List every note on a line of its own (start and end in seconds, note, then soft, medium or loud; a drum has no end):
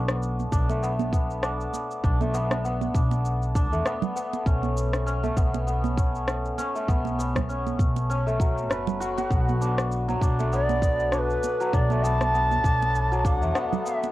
0.00 0.44 B1 medium
0.00 0.69 A3 medium
0.00 0.82 B3 medium
0.00 0.52 D4 medium
0.08 cross-stick medium
0.08 shaker soft
0.23 shaker soft
0.39 high conga medium
0.39 shaker soft
0.52 1.65 B1 medium
0.52 1.43 D4 medium
0.52 kick loud
0.52 shaker medium
0.69 2.20 A3 medium
0.69 muted conga medium
0.69 shaker soft
0.83 1.13 B3 medium
0.83 shaker soft
0.99 high conga medium
0.99 shaker soft
1.13 2.34 B3 medium
1.13 kick medium
1.13 shaker medium
1.30 shaker soft
1.43 2.04 D4 medium
1.43 cross-stick medium
1.43 shaker soft
1.61 shaker soft
1.74 muted conga soft
1.74 shaker medium
1.91 shaker soft
2.04 2.86 B1 medium
2.04 2.94 D4 loud
2.04 kick loud
2.04 shaker soft
2.21 3.72 A3 medium
2.21 high conga medium
2.21 shaker soft
2.34 2.64 B3 medium
2.34 shaker medium
2.51 cross-stick medium
2.51 high conga medium
2.51 shaker soft
2.65 3.85 B3 medium
2.65 shaker soft
2.81 high conga medium
2.81 shaker soft
2.95 3.72 B1 medium
2.95 3.55 D4 medium
2.95 kick loud
2.95 shaker medium
3.11 muted conga medium
3.11 shaker soft
3.25 shaker soft
3.42 shaker soft
3.55 4.52 D4 loud
3.55 kick loud
3.55 shaker medium
3.72 3.80 E2 medium
3.72 5.23 A3 medium
3.72 shaker soft
3.86 4.15 B3 loud
3.86 cross-stick medium
3.86 shaker soft
4.02 low conga medium
4.02 shaker soft
4.16 5.36 B3 medium
4.16 shaker medium
4.33 muted conga medium
4.33 shaker soft
4.46 5.29 B1 medium
4.46 5.06 C#4 medium
4.46 kick loud
4.46 shaker soft
4.63 high conga medium
4.63 shaker soft
4.77 shaker medium
4.93 cross-stick medium
4.93 shaker soft
5.06 5.97 C#4 medium
5.06 shaker soft
5.23 6.75 A3 medium
5.23 high conga medium
5.23 shaker soft
5.37 6.50 B1 medium
5.37 5.66 B3 loud
5.37 kick loud
5.37 shaker medium
5.54 muted conga medium
5.54 shaker soft
5.67 6.88 B3 medium
5.67 shaker soft
5.84 high conga medium
5.84 shaker soft
5.97 6.58 C#4 medium
5.97 kick loud
5.97 shaker medium
6.15 shaker soft
6.28 cross-stick medium
6.28 shaker soft
6.45 shaker soft
6.58 7.49 C#4 medium
6.58 muted conga soft
6.58 shaker medium
6.75 8.26 A3 medium
6.75 shaker soft
6.88 7.71 B1 medium
6.88 7.18 B3 medium
6.88 kick loud
6.88 shaker soft
7.05 high conga medium
7.05 shaker soft
7.19 9.30 B3 medium
7.19 shaker medium
7.36 kick medium
7.36 cross-stick medium
7.36 high conga medium
7.36 low conga medium
7.36 shaker soft
7.49 8.09 C#4 medium
7.49 shaker soft
7.67 high conga medium
7.67 shaker soft
7.79 8.70 B1 medium
7.79 kick loud
7.79 shaker medium
7.96 muted conga medium
7.96 shaker soft
8.10 9.67 C#4 medium
8.10 shaker soft
8.27 10.39 A3 medium
8.27 shaker soft
8.40 9.36 F#3 medium
8.40 kick loud
8.40 shaker medium
8.58 shaker soft
8.70 9.23 F#1 medium
8.70 11.43 B4 medium
8.70 cross-stick medium
8.70 shaker soft
8.87 low conga medium
8.87 shaker soft
9.00 9.17 F#4 loud
9.00 shaker medium
9.17 12.42 F#4 medium
9.17 muted conga medium
9.17 shaker soft
9.31 10.13 B1 medium
9.31 10.52 B3 medium
9.31 kick loud
9.31 shaker soft
9.48 high conga medium
9.48 shaker soft
9.61 10.22 D4 medium
9.61 shaker medium
9.78 cross-stick medium
9.78 shaker soft
9.92 shaker soft
10.08 11.59 F#3 medium
10.08 high conga medium
10.08 shaker soft
10.21 11.34 B1 medium
10.21 11.13 D4 loud
10.21 kick loud
10.21 shaker medium
10.39 11.90 A3 medium
10.39 muted conga medium
10.39 shaker soft
10.53 10.82 B3 medium
10.53 11.15 D5 loud
10.53 shaker soft
10.69 high conga medium
10.69 shaker soft
10.82 12.03 B3 medium
10.82 kick loud
10.82 shaker medium
11.00 shaker soft
11.12 11.73 D4 medium
11.12 11.20 C#5 medium
11.12 cross-stick medium
11.12 shaker soft
11.19 11.75 B4 loud
11.30 shaker soft
11.43 muted conga soft
11.43 shaker medium
11.60 13.10 F#3 medium
11.60 shaker soft
11.73 12.56 B1 medium
11.73 12.64 D4 medium
11.73 12.05 D5 loud
11.73 kick loud
11.73 shaker soft
11.90 13.41 A3 medium
11.90 high conga medium
11.90 shaker soft
12.03 12.34 B3 loud
12.03 13.19 A5 loud
12.03 shaker medium
12.21 cross-stick medium
12.21 high conga medium
12.21 shaker soft
12.34 13.55 B3 medium
12.34 shaker soft
12.51 high conga medium
12.51 shaker soft
12.64 13.42 B1 medium
12.64 13.25 D4 medium
12.64 kick loud
12.64 shaker medium
12.82 muted conga medium
12.82 shaker soft
12.95 shaker soft
13.12 14.12 F#3 medium
13.12 shaker soft
13.19 13.27 A5 medium
13.25 14.12 D4 medium
13.25 13.87 F#5 loud
13.25 kick loud
13.25 shaker medium
13.42 13.50 E2 medium
13.42 14.12 A3 medium
13.42 shaker soft
13.55 13.85 B3 loud
13.55 cross-stick medium
13.55 shaker soft
13.73 low conga medium
13.73 shaker soft
13.85 14.12 B3 medium
13.85 14.09 E5 loud
13.85 shaker medium
14.03 muted conga medium
14.03 shaker soft